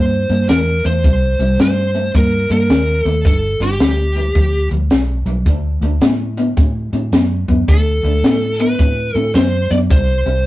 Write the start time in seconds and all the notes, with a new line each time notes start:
Already playing: G2 C3 A#3 C5
0.29 G2 C3 A#3, closed hi-hat
0.49 E2 C3 A3 A#4, snare, closed hi-hat
0.84 E2 C3 A3 C5, closed hi-hat
1.04 C2 C3 G3, kick, closed hi-hat
1.39 C2 C3 G3, closed hi-hat
1.58 G2 C3 A3 C5, snare, closed hi-hat
1.95 C3 A3, closed hi-hat
2.14 G2 C3 A#3 A#4, kick, closed hi-hat
2.50 G2 C3 A#3 A#4, closed hi-hat
2.69 D#2 C3 A3, snare, closed hi-hat
3.04 D#2 C3 A3 A4, closed hi-hat
3.24 G1 G2 D3 A4, kick, closed hi-hat
3.60 G1 G2 D3 G4, snare, closed hi-hat
3.79 D2 G2 E3, snare, closed hi-hat
4.15 G2 E3, closed hi-hat
4.35 D2 G2 F3, kick, closed hi-hat
4.71 D2 G2 F3, closed hi-hat
4.90 B1 G2 E3, snare, closed hi-hat
5.26 B1 G2 E3, closed hi-hat
5.46 D2 D3 A3, kick, closed hi-hat
5.81 D2 D3 A3, closed hi-hat
6.01 A2 D3 B3, snare, closed hi-hat
6.37 D3 B3, closed hi-hat
6.57 A2 D3 C4, kick, closed hi-hat
6.93 A2 D3 C4, closed hi-hat
7.12 F#2 D3 B3, snare, closed hi-hat
7.48 F#2 D3 B3, kick, closed hi-hat
7.68 D2 D3 A3 A4, kick, closed hi-hat
8.03 D2 D3 A3, closed hi-hat
8.23 A2 D3 B3, snare, closed hi-hat
8.60 D3 B3 B4, closed hi-hat
8.79 A2 D3 C4, kick, closed hi-hat
9.15 A2 D3 C4 A4, closed hi-hat
9.34 F#2 D3 B3 C5, snare, closed hi-hat
9.71 F#2 D3 B3 D5, snare, closed hi-hat
9.90 C2 C3 G3 C5, kick, closed hi-hat
10.26 C2 C3 G3, closed hi-hat